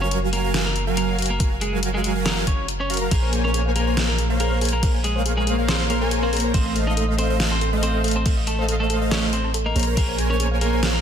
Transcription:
Already playing: F#1
0.01 F#3 C#4 F#4 A#4 C#5 F5 G#5
0.11 closed hi-hat
0.33 A#3 A#4, closed hi-hat
0.44 F#3 F#4 A#4 F5 G#5
0.54 F#3 F#4 A#4 F5 G#5, snare, closed hi-hat
0.66 A#3 A#4
0.76 closed hi-hat
0.87 F#3 F#4 A#4 F5 G#5
0.97 A#3 A#4, closed hi-hat
1.18 F#3 F#4 A#4 F5 G#5, closed hi-hat
1.22 closed hi-hat
1.26 closed hi-hat
1.30 A#3 A#4
1.40 F#3 F#4 A#4 F5 G#5, kick, closed hi-hat
1.61 G#3 G#4, closed hi-hat
1.73 F#3 F#4 A#4 F5 G#5
1.83 closed hi-hat
1.94 G#3 G#4
2.04 closed hi-hat
2.16 F#3 F#4 A#4 F5 G#5
2.26 A#3 A#4, snare, closed hi-hat
2.47 C#4 C#5, kick, closed hi-hat
2.68 closed hi-hat
2.80 C#4 C#5
2.90 F#3 F#4 A#4 F5 A#5, closed hi-hat
2.94 closed hi-hat
2.97 closed hi-hat
3.01 F#3 F#4 A#4 F5 A#5
3.11 A#1 A#3 G#4 A#4 C5 C#5 G#5, kick, closed hi-hat, crash
3.23 C5
3.33 G#4, closed hi-hat
3.44 A#3 C#4 A#4 C5 C#5 G#5
3.54 G#4, closed hi-hat
3.66 F5
3.76 A#3 G#4 A#4, closed hi-hat
3.87 A#3 A#4 C5 C#5 G#5
3.97 A#3 G#4 A#4 C5 C#5 F5, snare, closed hi-hat, crash
4.09 A#3 A#4
4.19 G#4, closed hi-hat
4.30 A#3 A#4 C5 C#5 F5
4.40 A#3 G#4 A#4, closed hi-hat
4.51 C5
4.61 A#3 G#4 A#4 C5 C#5 G#5, closed hi-hat, open hi-hat
4.69 closed hi-hat
4.73 A#3 A#4
4.83 A#3 G#4 A#4 C5 C#5 G#5, kick, closed hi-hat, crash
4.94 F5
5.04 G#3 G#4, closed hi-hat
5.16 A#3 A#4 C5 C#5 F5
5.26 G#4, closed hi-hat
5.37 G#3 G#4 A#4
5.47 G#4, closed hi-hat
5.59 A#3 A#4 C5 C#5 F5
5.68 C4 G#4 C5, snare, closed hi-hat, crash
5.80 C5
5.90 A#3 G#4 A#4 C5 C#5 C6, closed hi-hat
6.01 A#3 A#4 C5 C#5 G#5
6.11 G#4, closed hi-hat
6.23 C4 C5 F5
6.33 A#3 G#4 A#4 C5 C#5 A#5, closed hi-hat, open hi-hat
6.40 closed hi-hat
6.44 C5
6.54 A1 A3 C4 A4 C5 D#5 F5, kick, closed hi-hat, crash
6.66 C5
6.76 A4, closed hi-hat
6.87 A3 D#4 A4 C5 D#5 F5 A5
6.97 A4, closed hi-hat
7.09 D#5
7.18 C4 A4 C5, closed hi-hat
7.30 A3 A4 C5 D#5 F5
7.40 A3 A4 C5 D#5 F5, snare, closed hi-hat, crash
7.51 C4 C5 A5
7.61 A4, closed hi-hat
7.73 A3 A4 C5 D#5 F5
7.83 C4 A4 C5, closed hi-hat
7.94 C5
8.04 A3 A4 C5 D#5 F5, closed hi-hat, open hi-hat
8.11 closed hi-hat
8.16 C4 C5 A5
8.26 A3 A4 C5 D#5 F5, kick, closed hi-hat, crash
8.37 D#5
8.47 A3 A4, closed hi-hat
8.59 A3 A4 C5 D#5 F5
8.69 A4, closed hi-hat
8.80 A3 A4 A5
8.90 A4, closed hi-hat
9.01 A3 A4 C5 D#5 F5
9.11 C#4 A4 C#5, snare, closed hi-hat, crash
9.23 C5
9.33 C4 A4 C5, closed hi-hat
9.44 A5
9.54 A4, closed hi-hat
9.66 A#3 A#4 D#5
9.76 A#1 A#3 G#4 A#4 C5 C#5 A#5, closed hi-hat, open hi-hat
9.83 closed hi-hat
9.87 A#3 A#4 C5 C#5 A#5
9.97 A#3 G#4 A#4 G#5, kick, closed hi-hat, crash
10.09 C5
10.18 G#4, closed hi-hat
10.30 A#3 C#4 A#4 C5 C#5 G#5
10.40 G#4, closed hi-hat
10.51 F5
10.61 A#3 G#4 A#4, closed hi-hat
10.73 A#3 A#4 C5 C#5 G#5
10.83 A#3 G#4 A#4 C5 C#5 F5, snare, closed hi-hat, crash
10.94 A#3 A#4

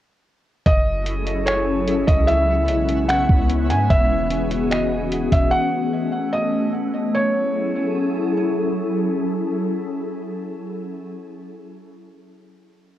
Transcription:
0.66 F#1 F#3 A3 C#4 E4 F#4 G#4 A4 D#5, kick, closed hi-hat
1.06 closed hi-hat
1.27 closed hi-hat
1.46 C#5, finger snap, closed hi-hat
1.88 closed hi-hat
2.07 C#2 D#5, kick, closed hi-hat
2.27 C#3 G#3 B3 C#4 E4 C#5 E5, closed hi-hat
2.68 B1, closed hi-hat
2.89 closed hi-hat
3.09 F#5, finger snap, closed hi-hat
3.29 C#2, kick
3.50 closed hi-hat
3.70 G#2 G#5, closed hi-hat
3.90 E1 E3 F#4 G#4 E5, kick, closed hi-hat
4.30 closed hi-hat
4.51 closed hi-hat
4.71 D#5, finger snap, closed hi-hat
5.12 closed hi-hat
5.32 E1 E5, kick, closed hi-hat
5.51 A3 F#5
6.33 D#5
7.15 F#3 C#4 E4 G#4 A4 C#5

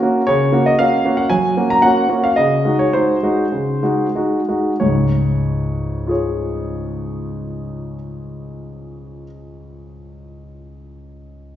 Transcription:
Already playing: A#4
0.03 A#3 C#4 F#4
0.27 C#3 C#5
0.52 A#3 C#4 F#4
0.66 D#5
0.79 A#3 C#4 F#4 F5
1.05 A#3 C#4 F#4
1.17 F#5
1.30 F#3 G#5
1.57 A#3 C#4 F#4
1.70 A#5
1.82 A#3 C#4 F#4 F#5
2.09 A#3 C#4 F#4
2.24 F5
2.36 C#3 D#5
2.65 G#3 D#4 F#4
2.79 C#5
2.93 G#3 D#4 F#4 C5
3.23 G#3 D#4 F#4
3.52 C#3
3.83 G#3 D#4 F#4
4.15 G#3 D#4 F#4
4.49 G#3 D#4 F#4
4.80 C#2 G#2 C#5
6.07 F4 G#4 C#5

